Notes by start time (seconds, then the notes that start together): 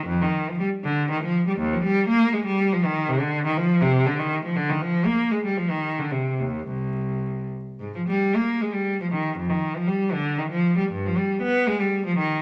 0.06 F2
0.21 D#3
0.49 F3
0.60 G3
0.84 D3
1.10 D#3
1.23 F3
1.47 G3
1.59 D#2
1.73 F3
1.83 G3
2.08 A#3
2.33 G#3
2.45 G3
2.72 F3
2.84 D#3
3.08 C3
3.20 D3
3.45 D#3
3.57 F3
3.81 C3
4.06 D3
4.19 D#3
4.44 F3
4.56 D3
4.69 D#3
4.81 F3
5.06 A#3
5.31 G#3
5.45 G3
5.57 F3
5.70 D#3
5.98 D3
6.11 C3
6.40 D#2
6.68 C2
7.80 G#2
7.95 F3
8.08 G3
8.36 A#3
8.61 G#3
8.73 G3
9.00 F3
9.11 D#3
9.37 F2
9.49 D#3
9.75 F3
9.87 G3
10.12 D3
10.38 D#3
10.50 F3
10.78 G3
10.91 G2
11.05 F3
11.17 G3
11.41 B3
11.67 G#3
11.80 G3
12.06 F3
12.18 D#3